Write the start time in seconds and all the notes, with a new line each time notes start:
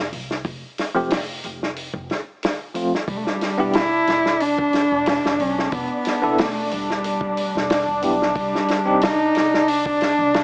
Already playing: F1
0.12 C2, open hi-hat
0.31 snare
0.45 F1, kick, open hi-hat
0.78 snare, open hi-hat
0.95 F1 F3 A3 C4 G4
1.10 snare, open hi-hat
1.44 F1, open hi-hat
1.63 snare
1.76 open hi-hat
1.94 F1, kick
2.10 snare, open hi-hat
2.43 snare, open hi-hat
2.74 F3 A3 C4 F4, open hi-hat
2.95 snare
3.08 E1 G3 D4, kick, open hi-hat
3.17 A3
3.24 G3, snare
3.41 snare, open hi-hat
3.58 E1 B3 D4 E4 G4
3.73 E4, snare, open hi-hat
4.07 E1, snare, open hi-hat
4.26 snare
4.40 D4, open hi-hat
4.59 kick
4.73 snare, open hi-hat
4.92 E1
5.06 snare, open hi-hat
5.25 E1, snare
5.39 B1 C#4, open hi-hat
5.59 snare
5.72 E1 B3, kick, open hi-hat
6.05 snare, open hi-hat
6.22 E1 B3 D4 E4 A4
6.38 A3, snare, open hi-hat
6.71 E1 G3, open hi-hat
6.90 snare
7.04 open hi-hat
7.21 kick
7.37 open hi-hat
7.55 E1, snare
7.70 snare, open hi-hat
7.88 E1
8.02 B1 B3 D4 E4 G4, open hi-hat
8.22 snare
8.35 C2 G3, kick, open hi-hat
8.55 snare
8.68 snare, open hi-hat
8.85 C2 C4 D4 D#4 G4
9.01 D#4, snare, open hi-hat
9.35 C2, snare, open hi-hat
9.54 snare
9.68 D4, open hi-hat
9.86 kick
10.00 snare, open hi-hat
10.19 C2
10.34 snare, open hi-hat